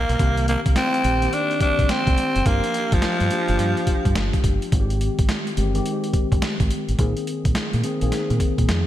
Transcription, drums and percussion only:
0.09 closed hi-hat medium
0.19 kick loud
0.19 closed hi-hat medium
0.37 closed hi-hat medium
0.48 closed hi-hat medium
0.66 kick loud
0.66 closed hi-hat medium
0.76 snare loud
0.76 closed hi-hat medium
0.94 closed hi-hat soft
1.04 closed hi-hat medium
1.22 closed hi-hat medium
1.33 closed hi-hat medium
1.51 closed hi-hat soft
1.60 kick medium
1.60 closed hi-hat medium
1.79 kick medium
1.79 closed hi-hat soft
1.89 snare loud
1.89 closed hi-hat medium
2.07 kick loud
2.07 closed hi-hat soft
2.18 closed hi-hat medium
2.36 closed hi-hat medium
2.46 kick loud
2.46 closed hi-hat medium
2.64 closed hi-hat medium
2.74 closed hi-hat medium
2.92 kick loud
2.92 closed hi-hat medium
3.02 snare loud
3.02 closed hi-hat medium
3.20 closed hi-hat soft
3.31 closed hi-hat medium
3.48 closed hi-hat medium
3.59 closed hi-hat medium
3.77 closed hi-hat soft
3.87 kick medium
3.87 closed hi-hat medium
4.05 kick medium
4.05 closed hi-hat medium
4.16 snare loud
4.16 closed hi-hat medium
4.33 kick loud
4.33 closed hi-hat soft
4.44 kick loud
4.44 closed hi-hat medium
4.62 closed hi-hat medium
4.72 kick loud
4.72 closed hi-hat medium
4.90 closed hi-hat medium
5.01 closed hi-hat medium
5.19 kick loud
5.19 closed hi-hat medium
5.29 snare loud
5.29 closed hi-hat medium
5.47 closed hi-hat soft
5.57 closed hi-hat medium
5.75 closed hi-hat medium
5.86 closed hi-hat medium
6.04 closed hi-hat soft
6.13 kick medium
6.13 closed hi-hat medium
6.32 kick medium
6.32 closed hi-hat medium
6.42 snare loud
6.42 closed hi-hat medium
6.60 kick medium
6.60 closed hi-hat medium
6.71 closed hi-hat medium
6.89 closed hi-hat medium
6.99 kick loud
6.99 closed hi-hat medium
7.17 closed hi-hat medium
7.27 closed hi-hat medium
7.45 kick loud
7.45 closed hi-hat medium
7.55 snare loud
7.55 closed hi-hat medium
7.73 closed hi-hat soft
7.84 closed hi-hat medium
8.01 closed hi-hat medium
8.12 snare medium
8.12 closed hi-hat medium
8.30 closed hi-hat soft
8.40 kick medium
8.40 closed hi-hat medium
8.58 kick medium
8.58 closed hi-hat medium
8.69 snare loud
8.69 closed hi-hat medium

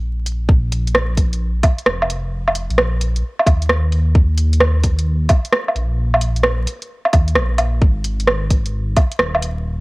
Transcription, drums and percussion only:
0.26 closed hi-hat soft
0.49 kick loud
0.72 closed hi-hat medium
0.87 closed hi-hat soft
0.95 cross-stick loud
1.17 kick medium
1.17 closed hi-hat medium
1.33 closed hi-hat soft
1.63 kick loud
1.63 closed hi-hat medium
1.63 low woodblock medium
1.78 closed hi-hat soft
1.86 cross-stick loud
2.02 low woodblock medium
2.10 closed hi-hat medium
2.48 low woodblock medium
2.55 closed hi-hat medium
2.71 closed hi-hat soft
2.78 cross-stick loud
3.01 closed hi-hat medium
3.16 closed hi-hat soft
3.39 low woodblock medium
3.46 kick loud
3.46 closed hi-hat medium
3.46 low woodblock medium
3.62 closed hi-hat soft
3.69 cross-stick loud
3.92 closed hi-hat medium
4.15 kick loud
4.38 closed hi-hat medium
4.53 closed hi-hat soft
4.61 cross-stick loud
4.84 kick medium
4.84 closed hi-hat medium
4.99 closed hi-hat soft
5.29 kick loud
5.29 closed hi-hat medium
5.29 low woodblock medium
5.45 closed hi-hat soft
5.52 cross-stick loud
5.68 low woodblock medium
5.76 closed hi-hat medium
6.14 low woodblock medium
6.21 closed hi-hat medium
6.36 closed hi-hat soft
6.43 cross-stick loud
6.67 closed hi-hat medium
6.82 closed hi-hat soft
7.05 low woodblock soft
7.13 kick loud
7.13 closed hi-hat medium
7.13 low woodblock soft
7.28 closed hi-hat soft
7.35 cross-stick loud
7.58 closed hi-hat medium
7.58 low woodblock medium
7.82 kick loud
8.05 closed hi-hat medium
8.20 closed hi-hat soft
8.28 cross-stick loud
8.51 kick medium
8.51 closed hi-hat medium
8.66 closed hi-hat soft
8.97 kick loud
8.97 closed hi-hat medium
8.97 low woodblock soft
9.12 closed hi-hat soft
9.19 cross-stick loud
9.35 low woodblock soft
9.42 closed hi-hat medium

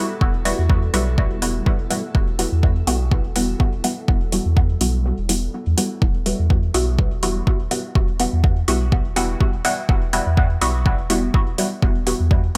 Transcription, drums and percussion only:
0.21 kick loud
0.45 open hi-hat medium
0.70 kick loud
0.94 open hi-hat medium
1.18 kick loud
1.42 open hi-hat medium
1.66 kick loud
1.91 open hi-hat medium
2.15 kick loud
2.39 open hi-hat medium
2.63 kick loud
2.87 open hi-hat medium
3.11 kick loud
3.36 open hi-hat medium
3.60 kick loud
3.84 open hi-hat medium
4.08 kick loud
4.32 open hi-hat medium
4.57 kick loud
4.81 open hi-hat medium
5.29 open hi-hat medium
5.78 open hi-hat medium
6.02 kick loud
6.26 open hi-hat medium
6.50 kick loud
6.74 open hi-hat medium
6.99 kick loud
7.23 open hi-hat medium
7.47 kick loud
7.71 open hi-hat medium
7.95 kick loud
8.20 open hi-hat medium
8.44 kick loud
8.68 open hi-hat medium
8.92 kick loud
9.16 open hi-hat medium
9.41 kick loud
9.65 open hi-hat medium
9.89 kick loud
10.13 open hi-hat medium
10.37 kick loud
10.62 open hi-hat medium
10.86 kick loud
11.10 open hi-hat medium
11.34 kick loud
11.58 open hi-hat medium
11.82 kick loud
12.07 open hi-hat medium
12.31 kick loud

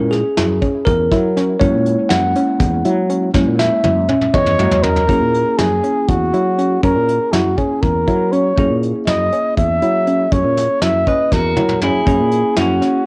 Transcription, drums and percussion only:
0.12 snare soft
0.12 closed hi-hat medium
0.37 snare loud
0.37 closed hi-hat medium
0.62 kick medium
0.62 closed hi-hat medium
0.86 kick loud
0.86 closed hi-hat medium
1.11 kick medium
1.11 snare soft
1.11 closed hi-hat medium
1.37 snare soft
1.37 closed hi-hat medium
1.61 kick loud
1.61 closed hi-hat medium
1.86 closed hi-hat medium
2.10 snare loud
2.10 closed hi-hat medium
2.35 closed hi-hat medium
2.60 kick loud
2.60 snare soft
2.60 closed hi-hat medium
2.85 closed hi-hat medium
3.10 closed hi-hat medium
3.34 kick loud
3.34 snare medium
3.59 snare medium
3.84 high tom medium
4.09 mid tom medium
4.21 mid tom medium
4.34 kick loud
4.34 mid tom medium
4.46 mid tom medium
4.59 mid tom medium
4.71 floor tom medium
4.83 floor tom loud
4.96 floor tom medium
5.09 kick loud
5.09 closed hi-hat medium
5.34 closed hi-hat medium
5.59 snare loud
5.59 closed hi-hat medium
5.83 closed hi-hat medium
6.08 kick loud
6.08 closed hi-hat medium
6.33 closed hi-hat medium
6.58 closed hi-hat medium
6.83 kick loud
6.83 closed hi-hat medium
7.08 closed hi-hat medium
7.33 snare medium
7.33 closed hi-hat medium
7.58 kick medium
7.58 closed hi-hat medium
7.82 kick loud
7.82 closed hi-hat medium
8.07 kick medium
8.07 closed hi-hat medium
8.32 closed hi-hat medium
8.58 kick loud
8.58 closed hi-hat medium
8.83 closed hi-hat soft
9.07 snare loud
9.07 closed hi-hat medium
9.32 closed hi-hat medium
9.58 kick loud
9.58 closed hi-hat medium
9.82 closed hi-hat medium
10.07 closed hi-hat medium
10.32 kick loud
10.32 closed hi-hat medium
10.57 snare soft
10.57 closed hi-hat medium
10.82 snare medium
10.82 closed hi-hat medium
11.07 kick medium
11.07 closed hi-hat medium
11.32 kick loud
11.32 snare medium
11.57 high tom medium
11.69 mid tom medium
11.82 mid tom medium
12.07 kick loud
12.07 closed hi-hat medium
12.31 closed hi-hat medium
12.57 snare medium
12.57 closed hi-hat medium
12.82 snare soft
12.82 closed hi-hat medium

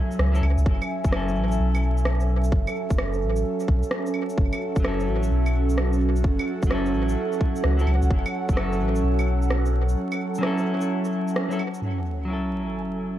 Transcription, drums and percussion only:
0.11 shaker medium
0.19 cross-stick loud
0.35 shaker soft
0.43 claves soft
0.58 shaker medium
0.66 kick loud
0.82 claves medium
0.82 shaker soft
1.04 kick loud
1.04 shaker medium
1.12 cross-stick loud
1.28 shaker soft
1.52 shaker medium
1.75 claves medium
1.75 shaker soft
1.98 shaker medium
2.05 cross-stick loud
2.20 shaker soft
2.44 shaker medium
2.52 kick loud
2.67 claves medium
2.67 shaker soft
2.90 kick loud
2.90 shaker medium
2.98 cross-stick loud
3.13 shaker soft
3.36 shaker medium
3.60 shaker soft
3.68 kick loud
3.83 shaker medium
3.91 cross-stick loud
4.06 shaker soft
4.14 claves soft
4.29 shaker medium
4.38 kick loud
4.53 claves medium
4.53 shaker soft
4.76 kick loud
4.76 shaker medium
4.85 cross-stick loud
5.00 shaker soft
5.23 shaker medium
5.46 claves medium
5.46 shaker soft
5.70 shaker medium
5.78 cross-stick loud
5.93 shaker soft
6.16 shaker medium
6.24 kick loud
6.39 claves medium
6.39 shaker soft
6.63 kick loud
6.63 shaker medium
6.71 cross-stick loud
6.86 shaker soft
7.09 shaker medium
7.32 shaker soft
7.41 kick loud
7.56 shaker medium
7.64 cross-stick loud
7.79 shaker soft
7.87 claves soft
8.02 shaker medium
8.11 kick loud
8.26 claves medium
8.26 shaker soft
8.49 kick loud
8.49 shaker medium
8.57 cross-stick loud
8.72 shaker soft
8.96 shaker medium
9.19 claves medium
9.19 shaker soft
9.42 shaker medium
9.50 cross-stick loud
9.66 shaker soft
9.89 shaker medium
10.12 claves medium
10.12 shaker soft
10.35 shaker medium
10.43 cross-stick loud
10.58 shaker soft
10.81 shaker medium
11.05 shaker soft
11.28 shaker medium
11.36 cross-stick loud
11.51 shaker soft
11.59 claves soft
11.74 shaker medium

